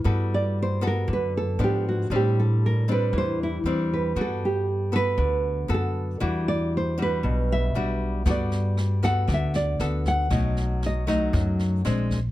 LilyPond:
<<
  \new Staff \with { instrumentName = "Nylon-string guitar" } { \time 4/4 \key g \major \tempo 4 = 117 r8 d''8 c''8 bes'8 b'8 a'8 g'8 fis'8 | g'8 a'8 bes'8 b'8 c''8 e'8 r8 b'8 | a'8 g'4 b'4. a'4 | r8 d''8 c''8 b'4 e''4. |
d''4 r8 fis''8 e''8 d''4 fis''8~ | fis''4 dis''4 r2 | }
  \new Staff \with { instrumentName = "Nylon-string guitar" } { \time 4/4 \key g \major << { <b fis' a'>4. <b fis' a'>4. <eis b d'>4 | <g c' d'>4. <g c' d'>4. <g c' d'>4 | <b fis' a'>4 r8 <b fis' a'>4. <b fis' a'>4 | <g d' fis'>4. <g d' fis'>4. <g d' fis'>4 |
<b fis' a'>4. <b fis' a'>4. <b fis' a'>4 | <fis a dis'>4. <fis a dis'>4. <aes c' d'>8 r8 | } \\ { g2 d4 r4 | a,2 e2 | g2 d2 | e2 b,2 |
g2 d2 | b,2 fis,4 r4 | } >> }
  \new Staff \with { instrumentName = "Upright bass" } { \clef bass \time 4/4 \key g \major g,2 fis,4 gis,4 | a,2 e,4 e,4 | g,2 d,4 fis,4 | e,2 b,,4 b,,4 |
g,2 d,4 d,4 | b,,2 fis,4 bes,,4 | }
  \new DrumStaff \with { instrumentName = "Drums" } \drummode { \time 4/4 r4 r4 r4 r4 | r4 r4 r4 r4 | r4 r4 r4 r4 | r4 r4 r4 r4 |
<bd sn>8 sn8 <ss sn>8 <bd sn>8 <bd ss sn>8 sn8 sn8 <bd sn>8 | <bd ss sn>8 sn8 sn8 <bd ss sn>8 <bd sn>8 sn8 <ss sn>8 <bd sn>8 | }
>>